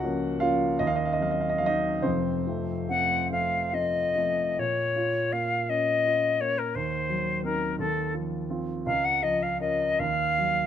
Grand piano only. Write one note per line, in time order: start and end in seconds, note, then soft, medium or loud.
0.00 0.82 C#2 medium
0.00 0.37 F3 soft
0.00 0.37 F#4 medium
0.00 0.41 F#5 loud
0.04 0.38 A#3 soft
0.04 0.38 C#4 medium
0.40 0.76 F3 soft
0.40 0.76 A#3 soft
0.40 0.76 C#4 medium
0.40 0.77 F4 medium
0.40 0.79 F5 loud
0.79 1.19 D#2 medium
0.79 0.88 D#5 medium
0.87 0.96 F5 medium
0.96 1.05 D#5 medium
1.05 1.14 F5 medium
1.13 1.23 D#5 medium
1.19 1.57 F#3 soft
1.19 1.57 C4 soft
1.19 1.32 F5 medium
1.31 1.41 D#5 medium
1.41 1.50 F5 medium
1.50 1.59 D#5 medium
1.58 2.00 F#3 soft
1.58 2.00 C4 soft
1.58 1.68 F5 medium
1.66 2.01 D#4 medium
1.66 2.03 D#5 loud
2.02 2.45 F1 medium
2.02 2.46 F2 medium
2.02 2.46 C4 medium
2.02 4.16 C5 medium
2.47 2.85 F3 soft
2.47 2.86 A3 soft
2.47 2.86 C4 soft
2.89 3.27 F3 soft
2.89 3.27 A3 soft
2.89 3.27 C4 soft
3.31 3.69 F3 soft
3.31 3.69 A3 soft
3.31 3.70 C4 soft
3.73 4.13 F3 soft
3.73 4.13 A3 soft
3.73 4.13 C4 soft
4.16 4.54 F3 soft
4.16 4.54 A3 soft
4.16 4.54 C4 soft
4.58 6.71 A#2 soft
4.96 5.54 F4 soft
5.33 5.91 A#3 soft
5.69 6.27 C#4 soft
6.05 6.62 F4 soft
6.40 6.75 A#3 soft
6.75 7.76 D#2 soft
7.09 7.65 F#3 soft
7.44 7.76 C4 soft
7.44 7.76 D#4 soft
7.79 8.83 D#2 medium
8.14 8.72 F3 soft
8.50 8.83 C4 soft
8.50 8.83 F4 soft
8.86 9.96 C#2 medium
9.22 9.83 F3 soft
9.60 9.95 C#4 soft
9.60 9.95 A#4 soft
9.99 10.67 D#2 medium
10.38 10.67 F#3 soft